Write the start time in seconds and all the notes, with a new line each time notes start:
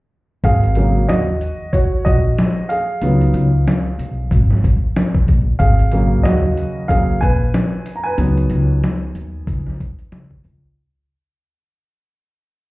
0.44 G#1 G#4 F5, kick, closed hi-hat
0.63 closed hi-hat
0.75 C#3 F#3 A#3, closed hi-hat
1.08 D#2 F#4 D#5, snare, closed hi-hat
1.41 closed hi-hat
1.73 F#4 C#5, kick, closed hi-hat
2.05 A#1 F#4 D#5, kick, closed hi-hat
2.38 snare, closed hi-hat
2.69 G#4 F5, closed hi-hat
3.02 C#2 D#3 F#3 B3, closed hi-hat
3.21 closed hi-hat
3.34 C#2, closed hi-hat
3.68 snare, closed hi-hat
3.98 B1, closed hi-hat
4.31 G#1, kick, closed hi-hat
4.51 snare
4.64 kick, closed hi-hat
4.96 snare, closed hi-hat
5.15 kick
5.28 A#1, kick, closed hi-hat
5.59 G#1 G#4 F5, kick, closed hi-hat
5.79 closed hi-hat
5.91 C#3 F#3 A#3, closed hi-hat
6.23 D#2 F#4 D#5, snare, closed hi-hat
6.57 closed hi-hat
6.88 C#3 F#3 A#3 G#4 F5, kick, closed hi-hat
7.21 A#1 B4 G#5, kick, closed hi-hat
7.54 snare, closed hi-hat
7.86 closed hi-hat
7.96 A#5
8.04 B4 G#5
8.18 C#2 D#3 F#3 B3, closed hi-hat
8.37 closed hi-hat
8.50 C#2, closed hi-hat
8.84 snare, closed hi-hat
9.15 D#2, closed hi-hat
9.47 C#2, kick, closed hi-hat
9.67 snare
9.80 kick, closed hi-hat
9.99 closed hi-hat
10.12 C#3, snare, closed hi-hat
10.31 kick
10.44 C#2, kick, open hi-hat